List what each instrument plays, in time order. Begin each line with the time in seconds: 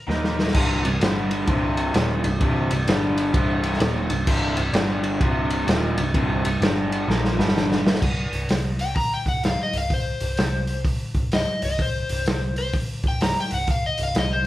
0.07 picked electric bass D#2, overdriven electric guitar D#3 A#3 D#4, snare
0.24 snare
0.39 snare
0.48 snare
0.54 picked electric bass C1, overdriven electric guitar C2 G2 C3, kick, crash
0.84 picked electric bass C1, overdriven electric guitar C2 G2, ride
1.01 picked electric bass G1, overdriven electric guitar G2 D3 G3, snare, ride
1.31 ride
1.47 picked electric bass C1, overdriven electric guitar C2 G2 C3, kick, ride
1.77 ride
1.94 picked electric bass D#1, overdriven electric guitar D#2 A#2 D#3, snare, ride
2.24 picked electric bass C1, overdriven electric guitar C2 G2, ride
2.40 picked electric bass C1, overdriven electric guitar C2 G2 C3, kick, ride
2.70 picked electric bass C1, overdriven electric guitar C2 G2, ride
2.87 picked electric bass G1, overdriven electric guitar G2 D3 G3, snare, ride
3.18 ride
3.34 picked electric bass C1, overdriven electric guitar C2 G2 C3, kick, ride
3.64 ride
3.74 snare
3.80 picked electric bass D#1, overdriven electric guitar D#2 A#2 D#3, snare, ride
4.10 picked electric bass C1, overdriven electric guitar C2 G2, ride
4.26 picked electric bass C1, overdriven electric guitar C2 G2 C3, kick, crash
4.57 picked electric bass C1, overdriven electric guitar C2 G2, ride
4.73 picked electric bass G1, overdriven electric guitar G2 D3 G3, snare, ride
5.04 ride
5.20 picked electric bass C1, overdriven electric guitar C2 G2 C3, kick, ride
5.50 ride
5.67 picked electric bass D#1, overdriven electric guitar D#2 A#2 D#3, snare, ride
5.97 picked electric bass C1, overdriven electric guitar C2 G2, ride
6.14 picked electric bass C1, overdriven electric guitar C2 G2 C3, kick, ride
6.44 picked electric bass C1, overdriven electric guitar C2 G2, ride
6.60 picked electric bass G1, overdriven electric guitar G2 D3 G3, snare, ride
6.92 ride
7.08 picked electric bass A#1, overdriven electric guitar A#2 F3 A#3, snare
7.25 snare
7.37 picked electric bass G1, overdriven electric guitar G2 D3 G3, snare
7.48 snare
7.57 snare
7.72 snare
7.87 snare
7.95 snare
8.02 picked electric bass C1, kick, crash
8.33 picked electric bass C1, open hi-hat
8.49 picked electric bass C2, snare, open hi-hat
8.79 electric slide guitar G5, open hi-hat
8.96 electric slide guitar A#5, kick, open hi-hat
9.14 electric slide guitar G5
9.26 picked electric bass C1, electric slide guitar F#5, kick, open hi-hat
9.43 picked electric bass C1, electric slide guitar F5, snare, open hi-hat
9.63 electric slide guitar D#5
9.73 picked electric bass C1, open hi-hat
9.78 electric slide guitar F5
9.90 electric slide guitar C5, kick, open hi-hat
10.20 picked electric bass C1, open hi-hat
10.37 picked electric bass C2, snare, open hi-hat
10.67 open hi-hat
10.85 kick, open hi-hat
11.14 picked electric bass C1, kick, open hi-hat
11.32 picked electric bass C1, electric slide guitar D#5, snare, open hi-hat
11.62 picked electric bass C1, electric slide guitar D#5, open hi-hat
11.79 electric slide guitar C5, kick, open hi-hat
12.09 picked electric bass C1, open hi-hat
12.26 picked electric bass C2, snare, open hi-hat
12.56 electric slide guitar C5, open hi-hat
12.73 kick, open hi-hat
13.04 picked electric bass C1, kick, open hi-hat
13.08 electric slide guitar G5
13.21 picked electric bass C1, electric slide guitar A#5, snare, open hi-hat
13.40 electric slide guitar G5
13.51 picked electric bass C1, electric slide guitar F#5, open hi-hat
13.68 electric slide guitar F5, kick, open hi-hat
13.86 electric slide guitar D#5
13.98 picked electric bass C1, open hi-hat
14.03 electric slide guitar F5
14.15 picked electric bass C2, electric slide guitar D#5, snare, open hi-hat
14.33 electric slide guitar C5